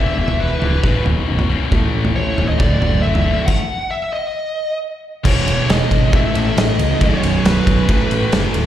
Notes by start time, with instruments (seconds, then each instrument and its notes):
Already playing: distorted electric guitar E2 B2 E3, lead electric guitar E5
0.17 picked electric bass E1, clean electric guitar E3 G#3 B3 E4
0.28 floor tom
0.38 picked electric bass E1, clean electric guitar E3 G#3 B3 E4, lead electric guitar B4
0.60 picked electric bass C#1, distorted electric guitar E2 B2 E3, floor tom
0.82 picked electric bass B0, distorted electric guitar B1 F#2 B2, kick, mid tom
1.05 picked electric bass D#1, clean electric guitar F#2 B2 F#3 D#4, floor tom
1.27 picked electric bass B0, clean electric guitar F#2 B2 F#3 D#4
1.39 floor tom
1.49 distorted electric guitar B1 F#2 B2
1.72 picked electric bass A1, distorted electric guitar A2 E3 A3 C#4 E4 A4, kick, floor tom
1.94 picked electric bass A1
2.05 floor tom
2.16 picked electric bass A1, lead electric guitar C#5
2.36 picked electric bass D#1, distorted electric guitar E3 A3, floor tom
2.40 distorted electric guitar A2
2.48 lead electric guitar D#5
2.59 picked electric bass D1, distorted electric guitar D2 A2 D3 F#3 A3 D4, lead electric guitar D5, kick, mid tom
2.81 picked electric bass F#1, floor tom
3.02 picked electric bass F#1, lead electric guitar E5
3.15 floor tom
3.24 distorted electric guitar D2 A2 D3
3.46 lead electric guitar F#5, kick, crash
3.91 lead electric guitar E5
4.13 lead electric guitar D#5
5.24 picked electric bass E1, distorted electric guitar E2 B2 E3 G#3 B3 C#4, lead electric guitar C#5, kick, crash
5.46 picked electric bass E1, ride
5.69 picked electric bass E1, lead electric guitar D#5, snare, ride
5.91 picked electric bass G#1, kick, ride
6.12 picked electric bass A1, distorted electric guitar A2 E3 A3 C#4 E4 A4, lead electric guitar E5, kick, ride
6.35 picked electric bass A1, ride
6.57 picked electric bass A1, lead electric guitar D#5, snare, ride
6.79 picked electric bass C#2, ride
7.00 picked electric bass B0, distorted electric guitar B1 F#2 B2 F#3 C#4, lead electric guitar C#5, kick, ride
7.23 picked electric bass B0, ride
7.45 picked electric bass B0, lead electric guitar B4, snare, ride
7.67 picked electric bass B0, kick, ride
7.87 picked electric bass A1, distorted electric guitar A2 E3 C#4 E4 A4, kick, ride
7.92 distorted electric guitar A3
8.11 picked electric bass A1, ride
8.32 picked electric bass F#1, snare, ride
8.54 picked electric bass D#1, ride